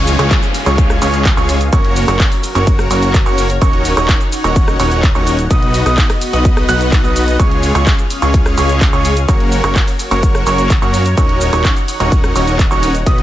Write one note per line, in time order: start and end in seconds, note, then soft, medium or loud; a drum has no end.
0.00 0.17 C#2 loud
0.00 0.16 G#3 loud
0.00 0.16 C#4 medium
0.00 1.71 C#4 medium
0.00 0.16 F4 loud
0.00 0.16 G#4 medium
0.00 1.71 G#4 medium
0.00 0.16 C#5 loud
0.00 1.71 F5 medium
0.00 0.16 C#6 loud
0.00 downlifter medium
0.07 open hi-hat loud
0.07 cabasa medium
0.19 0.38 C#2 medium
0.19 0.40 G#3 medium
0.19 0.40 C#4 medium
0.19 0.40 F4 medium
0.19 0.40 G#4 medium
0.19 0.40 C#5 loud
0.19 0.40 C#6 medium
0.19 cross-stick medium
0.19 closed hi-hat medium
0.19 cabasa soft
0.31 kick loud
0.31 clap loud
0.31 closed hi-hat medium
0.31 cabasa soft
0.43 closed hi-hat soft
0.43 cabasa soft
0.54 open hi-hat loud
0.54 cabasa medium
0.66 0.99 C#2 loud
0.66 0.99 G#3 medium
0.66 0.99 C#4 medium
0.66 0.99 F4 medium
0.66 0.99 G#4 medium
0.66 0.99 C#5 medium
0.66 0.99 C#6 medium
0.66 closed hi-hat medium
0.66 cabasa soft
0.78 kick loud
0.78 closed hi-hat medium
0.78 cabasa soft
0.90 cross-stick medium
0.90 cabasa soft
1.02 1.35 C#2 loud
1.02 1.23 G#3 medium
1.02 1.23 C#4 medium
1.02 1.23 F4 medium
1.02 1.23 G#4 medium
1.02 1.23 C#5 medium
1.02 1.23 C#6 medium
1.02 open hi-hat loud
1.02 cabasa medium
1.14 closed hi-hat medium
1.14 cabasa soft
1.25 kick loud
1.25 clap loud
1.25 closed hi-hat medium
1.25 cabasa soft
1.37 1.70 C#2 loud
1.37 1.58 G#3 medium
1.37 1.58 C#4 medium
1.37 1.58 F4 medium
1.37 1.58 G#4 medium
1.37 1.58 C#5 loud
1.37 1.58 C#6 loud
1.37 cabasa soft
1.49 open hi-hat loud
1.49 cabasa medium
1.61 closed hi-hat medium
1.61 cabasa soft
1.73 2.06 F#1 loud
1.73 2.05 A#3 loud
1.73 2.05 C#4 loud
1.73 2.05 F#4 medium
1.73 3.60 F#4 medium
1.73 2.05 A#4 medium
1.73 3.60 A#4 medium
1.73 2.05 C#5 loud
1.73 5.47 C#5 medium
1.73 2.05 C#6 loud
1.73 kick loud
1.73 closed hi-hat medium
1.73 cabasa soft
1.85 closed hi-hat soft
1.96 open hi-hat loud
1.96 cabasa medium
2.08 2.27 F#1 loud
2.08 2.29 A#3 medium
2.08 2.29 C#4 medium
2.08 2.29 F#4 medium
2.08 2.29 A#4 medium
2.08 2.29 C#5 loud
2.08 2.29 C#6 loud
2.08 cross-stick medium
2.08 closed hi-hat medium
2.08 cabasa soft
2.20 kick loud
2.20 clap loud
2.20 closed hi-hat medium
2.20 cabasa soft
2.32 open hi-hat medium
2.32 cabasa soft
2.43 open hi-hat loud
2.43 cabasa medium
2.55 2.88 F#1 loud
2.55 2.88 A#3 medium
2.55 2.88 C#4 medium
2.55 2.88 F#4 medium
2.55 2.88 A#4 medium
2.55 2.88 C#5 medium
2.55 2.88 C#6 medium
2.55 closed hi-hat medium
2.55 cabasa soft
2.67 kick loud
2.67 closed hi-hat medium
2.67 cabasa soft
2.79 cross-stick medium
2.79 cabasa soft
2.91 3.24 F#1 loud
2.91 3.12 A#3 medium
2.91 3.12 C#4 medium
2.91 3.12 F#4 medium
2.91 3.12 A#4 medium
2.91 3.12 C#5 medium
2.91 3.12 C#6 medium
2.91 open hi-hat loud
2.91 cabasa medium
3.03 closed hi-hat medium
3.03 cabasa soft
3.14 kick loud
3.14 clap loud
3.14 closed hi-hat medium
3.14 cabasa soft
3.26 3.59 F#1 loud
3.26 3.47 A#3 medium
3.26 3.47 C#4 medium
3.26 3.47 F#4 medium
3.26 3.47 A#4 medium
3.26 3.47 C#5 loud
3.26 3.47 C#6 medium
3.26 cabasa soft
3.38 open hi-hat loud
3.38 cabasa medium
3.50 closed hi-hat medium
3.50 cabasa soft
3.61 3.94 C#4 loud
3.61 3.94 D#4 medium
3.61 5.49 D#4 medium
3.61 3.94 F#4 loud
3.61 3.94 A#4 medium
3.61 3.94 C#5 loud
3.61 5.49 F#5 medium
3.61 3.94 C#6 loud
3.61 kick loud
3.61 closed hi-hat medium
3.61 cabasa soft
3.73 closed hi-hat soft
3.85 open hi-hat loud
3.85 cabasa medium
3.97 4.16 D#1 loud
3.97 4.18 C#4 medium
3.97 4.18 D#4 medium
3.97 4.18 F#4 medium
3.97 4.18 A#4 medium
3.97 4.18 C#5 loud
3.97 4.18 C#6 medium
3.97 cross-stick medium
3.97 closed hi-hat medium
3.97 cabasa soft
4.09 kick loud
4.09 clap loud
4.09 closed hi-hat medium
4.09 cabasa soft
4.21 closed hi-hat soft
4.21 cabasa soft
4.32 open hi-hat loud
4.32 cabasa medium
4.44 4.77 D#1 loud
4.44 4.77 C#4 medium
4.44 4.77 D#4 medium
4.44 4.77 F#4 medium
4.44 4.77 A#4 medium
4.44 4.77 C#5 medium
4.44 4.77 C#6 medium
4.44 closed hi-hat soft
4.44 cabasa soft
4.56 kick loud
4.56 closed hi-hat medium
4.56 cabasa soft
4.68 cross-stick medium
4.68 cabasa soft
4.80 5.13 D#1 loud
4.80 5.01 C#4 medium
4.80 5.01 D#4 medium
4.80 5.01 F#4 medium
4.80 5.01 A#4 medium
4.80 5.01 C#5 medium
4.80 5.01 C#6 medium
4.80 open hi-hat loud
4.80 cabasa medium
4.91 closed hi-hat soft
4.91 cabasa soft
5.03 kick loud
5.03 clap loud
5.03 closed hi-hat medium
5.03 cabasa soft
5.15 5.48 D#1 loud
5.15 5.36 C#4 medium
5.15 5.36 D#4 medium
5.15 5.36 F#4 medium
5.15 5.36 A#4 medium
5.15 5.36 C#5 loud
5.15 5.36 C#6 loud
5.15 cabasa soft
5.27 open hi-hat loud
5.27 cabasa medium
5.39 closed hi-hat medium
5.39 cabasa soft
5.50 5.83 B3 loud
5.50 7.38 B3 medium
5.50 5.83 D#4 medium
5.50 5.83 F#4 medium
5.50 7.38 F#4 medium
5.50 5.83 B4 medium
5.50 5.83 D#5 loud
5.50 7.38 D#5 loud
5.50 5.83 D#6 loud
5.50 kick loud
5.50 closed hi-hat medium
5.50 cabasa soft
5.62 closed hi-hat soft
5.74 open hi-hat loud
5.74 cabasa medium
5.86 6.05 B1 loud
5.86 6.07 B3 medium
5.86 6.07 D#4 medium
5.86 6.07 F#4 medium
5.86 6.07 B4 medium
5.86 6.07 D#5 loud
5.86 6.07 D#6 medium
5.86 cross-stick medium
5.86 closed hi-hat medium
5.86 cabasa soft
5.98 kick loud
5.98 clap loud
5.98 closed hi-hat medium
5.98 cabasa soft
6.10 cross-stick medium
6.10 open hi-hat medium
6.10 cabasa soft
6.21 open hi-hat loud
6.21 cabasa medium
6.33 6.66 B1 loud
6.33 6.66 B3 medium
6.33 6.66 D#4 medium
6.33 6.66 F#4 medium
6.33 6.66 B4 medium
6.33 6.66 D#5 medium
6.33 6.66 D#6 medium
6.33 closed hi-hat soft
6.33 cabasa soft
6.45 kick loud
6.45 closed hi-hat medium
6.45 cabasa soft
6.57 cross-stick medium
6.57 cabasa soft
6.68 7.02 B1 loud
6.68 7.01 B3 loud
6.68 7.01 D#4 medium
6.68 7.01 F#4 medium
6.68 7.01 B4 loud
6.68 7.01 F#5 loud
6.68 7.01 F#6 loud
6.68 open hi-hat loud
6.68 cabasa medium
6.81 closed hi-hat soft
6.81 cabasa soft
6.92 kick loud
6.92 clap loud
6.92 closed hi-hat medium
6.92 cabasa soft
7.04 7.37 B1 loud
7.04 7.37 B3 medium
7.04 7.37 D#4 medium
7.04 7.37 F#4 medium
7.04 7.37 B4 medium
7.04 7.37 D#5 medium
7.04 7.37 D#6 medium
7.04 cabasa soft
7.16 open hi-hat loud
7.16 cabasa medium
7.28 closed hi-hat medium
7.28 cabasa soft
7.39 7.72 G#3 loud
7.39 9.27 C#4 medium
7.39 7.72 C#4 medium
7.39 7.72 F4 loud
7.39 9.27 G#4 medium
7.39 7.72 G#4 medium
7.39 7.72 C#5 loud
7.39 9.26 F5 medium
7.39 7.72 C#6 loud
7.39 kick loud
7.39 closed hi-hat medium
7.39 cabasa soft
7.51 closed hi-hat soft
7.63 open hi-hat loud
7.63 cabasa medium
7.75 7.94 C#2 loud
7.75 7.96 G#3 medium
7.75 7.96 C#4 medium
7.75 7.96 F4 medium
7.75 7.96 G#4 medium
7.75 7.96 C#5 loud
7.75 7.96 C#6 loud
7.75 cross-stick medium
7.75 closed hi-hat medium
7.75 cabasa soft
7.87 kick loud
7.87 clap loud
7.87 closed hi-hat medium
7.87 cabasa soft
7.99 closed hi-hat soft
7.99 cabasa soft
8.10 open hi-hat loud
8.10 cabasa medium
8.22 8.55 C#2 loud
8.22 8.55 G#3 medium
8.22 8.55 C#4 medium
8.22 8.55 F4 medium
8.22 8.55 G#4 medium
8.22 8.55 C#5 medium
8.22 8.55 C#6 medium
8.22 closed hi-hat soft
8.22 cabasa soft
8.34 kick loud
8.34 closed hi-hat medium
8.34 cabasa soft
8.46 cross-stick medium
8.46 cabasa soft
8.58 8.91 C#2 loud
8.58 8.79 G#3 medium
8.58 8.79 C#4 medium
8.58 8.79 F4 medium
8.58 8.79 G#4 medium
8.58 8.79 C#5 medium
8.58 8.79 C#6 medium
8.58 open hi-hat loud
8.58 cabasa medium
8.69 closed hi-hat medium
8.69 cabasa soft
8.81 kick loud
8.81 clap loud
8.81 closed hi-hat medium
8.81 cabasa soft
8.93 9.26 C#2 loud
8.93 9.14 G#3 medium
8.93 9.14 C#4 medium
8.93 9.14 F4 medium
8.93 9.14 G#4 medium
8.93 9.14 C#5 loud
8.93 9.14 C#6 loud
8.93 cabasa soft
9.05 open hi-hat loud
9.05 cabasa medium
9.17 closed hi-hat medium
9.17 cabasa soft
9.28 9.62 F#1 loud
9.28 9.61 A#3 loud
9.28 9.61 C#4 medium
9.28 11.16 F#4 medium
9.28 9.61 F#4 medium
9.28 11.16 A#4 medium
9.28 9.61 A#4 medium
9.28 13.03 C#5 medium
9.28 9.61 C#5 loud
9.28 9.61 C#6 loud
9.28 kick loud
9.28 closed hi-hat medium
9.28 cabasa soft
9.40 closed hi-hat soft
9.52 open hi-hat loud
9.52 cabasa medium
9.64 9.83 F#1 loud
9.64 9.85 A#3 medium
9.64 9.85 C#4 medium
9.64 9.85 F#4 medium
9.64 9.85 A#4 medium
9.64 9.85 C#5 loud
9.64 9.85 C#6 loud
9.64 cross-stick medium
9.64 closed hi-hat medium
9.64 cabasa soft
9.76 kick loud
9.76 clap loud
9.76 closed hi-hat medium
9.76 cabasa soft
9.88 open hi-hat medium
9.88 cabasa soft
9.99 open hi-hat loud
9.99 cabasa medium
10.11 10.44 F#1 loud
10.11 10.44 A#3 medium
10.11 10.44 C#4 medium
10.11 10.44 F#4 medium
10.11 10.44 A#4 medium
10.11 10.44 C#5 medium
10.11 10.44 C#6 medium
10.11 closed hi-hat medium
10.11 cabasa soft
10.23 kick loud
10.23 closed hi-hat medium
10.23 cabasa soft
10.35 cross-stick medium
10.35 cabasa soft
10.47 10.80 F#1 loud
10.47 10.68 A#3 medium
10.47 10.68 C#4 medium
10.47 10.68 F#4 medium
10.47 10.68 A#4 medium
10.47 10.68 C#5 loud
10.47 10.68 C#6 medium
10.47 open hi-hat loud
10.47 cabasa medium
10.58 closed hi-hat medium
10.58 cabasa soft
10.70 kick loud
10.70 clap loud
10.70 closed hi-hat medium
10.70 cabasa soft
10.82 11.15 F#2 medium
10.82 11.03 A#3 medium
10.82 11.03 C#4 medium
10.82 11.03 F#4 medium
10.82 11.03 A#4 medium
10.82 11.03 C#5 loud
10.82 11.03 C#6 loud
10.82 cabasa soft
10.94 open hi-hat loud
10.94 cabasa medium
11.06 closed hi-hat medium
11.06 cabasa soft
11.17 11.51 D#1 loud
11.17 11.50 C#4 loud
11.17 13.04 D#4 medium
11.17 11.50 D#4 medium
11.17 11.50 F#4 medium
11.17 11.50 A#4 medium
11.17 11.50 C#5 loud
11.17 13.04 F#5 medium
11.17 11.50 C#6 loud
11.17 kick loud
11.17 closed hi-hat medium
11.17 cabasa soft
11.29 closed hi-hat soft
11.41 open hi-hat loud
11.41 cabasa medium
11.53 11.72 D#1 loud
11.53 11.74 C#4 medium
11.53 11.74 D#4 medium
11.53 11.74 F#4 medium
11.53 11.74 A#4 medium
11.53 11.74 C#5 loud
11.53 11.74 C#6 medium
11.53 cross-stick medium
11.53 closed hi-hat medium
11.53 cabasa soft
11.65 kick loud
11.65 clap loud
11.65 closed hi-hat medium
11.65 cabasa soft
11.77 closed hi-hat soft
11.77 cabasa soft
11.88 open hi-hat loud
11.88 cabasa medium
12.00 12.33 D#1 loud
12.00 12.33 C#4 medium
12.00 12.33 D#4 medium
12.00 12.33 F#4 medium
12.00 12.33 A#4 medium
12.00 12.33 C#5 medium
12.00 12.33 C#6 medium
12.00 closed hi-hat medium
12.00 cabasa soft
12.12 kick loud
12.12 closed hi-hat medium
12.12 cabasa soft
12.24 cross-stick medium
12.24 cabasa soft
12.36 12.69 D#1 loud
12.36 12.57 C#4 medium
12.36 12.57 D#4 medium
12.36 12.57 F#4 medium
12.36 12.57 A#4 medium
12.36 12.57 C#5 medium
12.36 12.57 C#6 medium
12.36 open hi-hat loud
12.36 cabasa medium
12.47 closed hi-hat medium
12.47 cabasa soft
12.59 kick loud
12.59 clap loud
12.59 closed hi-hat medium
12.59 cabasa soft
12.71 13.04 D#1 loud
12.71 12.92 C#4 medium
12.71 12.92 D#4 medium
12.71 12.92 F#4 medium
12.71 12.92 A#4 medium
12.71 12.92 C#5 loud
12.71 12.92 C#6 loud
12.71 cabasa soft
12.83 open hi-hat loud
12.83 cabasa medium
12.95 closed hi-hat medium
12.95 cabasa soft
13.06 13.23 B1 loud
13.06 13.23 B3 medium
13.06 13.23 B3 loud
13.06 13.23 D#4 medium
13.06 13.23 F#4 medium
13.06 13.23 B4 medium
13.06 13.23 D#5 loud
13.06 13.23 D#6 loud
13.06 kick loud
13.06 closed hi-hat medium
13.06 cabasa soft
13.18 closed hi-hat soft